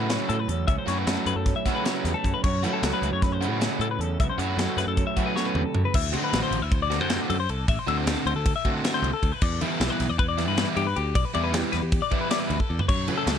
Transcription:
Already playing: F#2 C#3 F#3 A3 C#4 E4
0.00 A2 B4
0.09 F#3 A3 C#4 F#4, snare, closed hi-hat
0.29 A2 A3 A4, closed hi-hat
0.39 B4
0.48 E2 F#2 C#4 A4, closed hi-hat
0.68 C#2 F#2 C#4 E5, kick, closed hi-hat
0.78 C5
0.87 F#2 F#3 A3 C#4 E4 F#4 C#5, snare, closed hi-hat
0.98 B4
1.06 F#2 F#3 A3 C#4 F#4 A4, snare, closed hi-hat
1.26 F#2 A3 B4, closed hi-hat
1.36 F#2 A4
1.46 C#4, kick, snare, closed hi-hat
1.56 E5
1.66 C#3 F#3 A3 C#4 E4 F#4, kick, snare, closed hi-hat
1.75 B4
1.84 F#3 A3 C#4 F#4 C#5, snare, closed hi-hat
1.95 B4
2.05 E2 G3, snare, closed hi-hat
2.14 A3 A4
2.24 F#2 C#4, kick, closed hi-hat
2.34 B4
2.44 F#2 C#4 C#5, kick, crash
2.63 F#3 A3 C#4 E4 F#4 B4, closed hi-hat
2.73 A4
2.83 C#2 F#3 A3 C#4 F#4, snare, closed hi-hat
2.93 B4
3.02 C#2 A3, closed hi-hat
3.11 F#2 C#5
3.22 C#4 B4, kick, snare, closed hi-hat
3.32 C5
3.41 C#3 F#3 A3 C#4 E4 F#4, closed hi-hat
3.50 A2 B4
3.60 F#3 A3 C#4 F#4, snare, closed hi-hat
3.64 C#4
3.79 A2 A4, closed hi-hat
3.84 A3
3.91 B4
3.99 E2 F#2 A4, closed hi-hat
4.03 C#4
4.20 C#2 F#2 B3 E5, kick, closed hi-hat
4.30 C#4 C5
4.38 F#2 F#3 A3 C#4 F#4 C#5, closed hi-hat
4.42 E4
4.49 B4
4.57 F#2 F#3 A3 C#4 F#4 A4, snare, closed hi-hat
4.77 F#2 A3 B4, snare, closed hi-hat
4.86 F#2 A4
4.97 C#4, kick, closed hi-hat
5.07 E5
5.16 C#3 F#3 A3 C#4 E4 F#4, kick, closed hi-hat
5.26 B4
5.35 B2 F#3 A3 C#4 F#4 C#5, snare
5.46 B4
5.55 E2 C3, mid tom
5.66 A4
5.75 F#2 C#3, floor tom
5.85 B4
5.94 D2 E5, kick, crash
6.13 D3 A3 C4 F#4 C5, ride
6.24 B4
6.32 A1 D3 A3 C4 F#4, snare, ride
6.43 C5
6.51 A1, ride
6.62 D2 E5
6.72 C5, kick, ride
6.82 D5
6.90 D3 A3 C4 F#4, snare, ride
7.01 F#2 C5
7.10 D3 A3 C4 F#4, snare, ride
7.30 F#2 A4, ride
7.40 C5
7.49 C2 A4, ride
7.68 A1 E5, kick, ride
7.79 C5
7.87 D2 D3 A3 C4 F#4 E5, ride
7.98 C5
8.06 D2 D3 A3 C4 F#4 A4, snare, ride
8.26 D2 C5, ride
8.36 D2 A4
8.46 kick, ride
8.56 E5
8.65 D3 A3 C4 F#4, kick, ride
8.75 C5
8.84 D3 A3 C4 F#4 E5, snare, ride
8.94 C5
9.02 C2, ride
9.14 A4
9.23 D2, kick, ride
9.32 B4
9.41 E2 D5, kick, crash
9.61 E3 G3 B3 E4 B4, ride
9.71 A4
9.80 B1 E3 G3 B3 E4, snare, ride
9.90 B4
10.00 B1, snare, ride
10.09 E2 D5
10.19 B4, kick, ride
10.29 D5
10.38 E3 G3 B3 E4, snare, ride
10.48 G2 B4
10.57 E3 G3 B3 E4, snare, ride
10.77 G2 G4, ride
10.87 B4
10.96 D2 G4, ride
11.15 B1 D5, kick, ride
11.25 B4
11.34 E2 E3 G3 B3 E4 D5, ride
11.44 B4
11.53 E2 E3 G3 B3 E4 G4, snare, ride
11.72 E2 B4, snare, ride
11.82 E2 G4
11.92 kick, ride
12.02 D5
12.11 E3 G3 B3 E4, kick, ride
12.21 B4
12.31 E3 G3 B3 E4 D5, snare, ride
12.40 B4
12.50 D2, ride
12.60 A4, kick
12.70 E2
12.79 B4, floor tom
12.89 F#2 C#5, kick, crash
13.08 C#3 F#3 A3 C#4 B4, ride
13.17 A4
13.27 C#2 C#3 F#3 A3 C#4, snare, ride

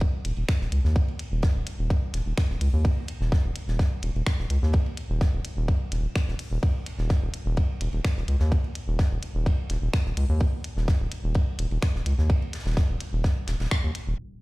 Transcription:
0.00 kick, ride
0.25 D#1, closed hi-hat, ride
0.36 D#1, ride
0.48 finger snap, kick, snare, ride
0.61 D#1, snare
0.72 C#2, closed hi-hat, ride
0.84 D#2, snare
0.95 kick, ride
1.08 ride
1.19 closed hi-hat, ride
1.32 D#1
1.42 kick, snare, ride
1.55 D#1
1.67 closed hi-hat, ride
1.79 D#1
1.90 kick, ride
2.14 D#1, snare, closed hi-hat, ride
2.26 D#1
2.38 finger snap, kick, snare, ride
2.50 D#1, snare
2.61 C#2, closed hi-hat, open hi-hat
2.73 D#2
2.85 kick, ride
3.08 closed hi-hat, ride
3.21 D#1, snare
3.32 kick, snare, ride
3.44 D#1
3.56 closed hi-hat, ride
3.68 D#1, snare
3.79 kick, snare, ride
4.02 D#1, closed hi-hat, ride
4.15 D#1, ride
4.26 finger snap, kick, snare, ride
4.39 D#1, snare
4.50 C#2, closed hi-hat, ride
4.63 D#2, snare
4.73 kick, ride
4.86 ride
4.97 closed hi-hat, ride
5.10 D#1
5.21 kick, snare, ride
5.33 D#1
5.45 closed hi-hat, ride
5.57 D#1
5.68 kick, ride
5.92 D#1, snare, closed hi-hat, ride
6.15 finger snap, kick, snare, ride
6.28 D#1, snare
6.39 closed hi-hat, open hi-hat
6.51 D#1
6.63 kick, ride
6.86 closed hi-hat, ride
6.98 D#1, snare
7.09 kick, snare, ride
7.22 D#1
7.34 closed hi-hat, ride
7.46 D#1
7.57 kick, ride
7.81 D#1, closed hi-hat, ride
7.93 D#1, ride
8.05 finger snap, kick, snare, ride
8.17 D#1, snare
8.28 C#2, closed hi-hat, ride
8.40 D#2, snare
8.52 kick, ride
8.64 ride
8.75 closed hi-hat, ride
8.88 D#1
8.99 kick, snare, ride
9.11 D#1
9.23 closed hi-hat, ride
9.35 D#1
9.46 kick, ride
9.69 D#1, snare, closed hi-hat, ride
9.82 D#1
9.93 finger snap, kick, snare, ride
10.06 D#1, snare
10.17 C#2, closed hi-hat, open hi-hat
10.29 D#2
10.40 kick, ride
10.64 closed hi-hat, ride
10.77 D#1, snare
10.88 kick, snare, ride
11.00 D#1
11.12 closed hi-hat, ride
11.24 D#1
11.34 kick, ride
11.59 D#1, closed hi-hat, ride
11.71 D#1, ride
11.82 finger snap, kick, snare, ride
11.95 D#1, snare
12.06 C#2, closed hi-hat, ride
12.18 D#2, snare
12.30 kick, ride
12.42 ride
12.53 snare, closed hi-hat, ride
12.59 snare, ride
12.65 D#1, snare, ride
12.71 snare, ride
12.77 kick, snare, ride
12.89 D#1
13.01 closed hi-hat, ride
13.13 D#1
13.24 kick, snare, ride
13.47 D#1, snare, closed hi-hat, ride
13.60 D#1, snare, ride
13.65 snare, ride
13.71 finger snap, kick
13.84 D#2
13.95 closed hi-hat, ride
14.07 D#1

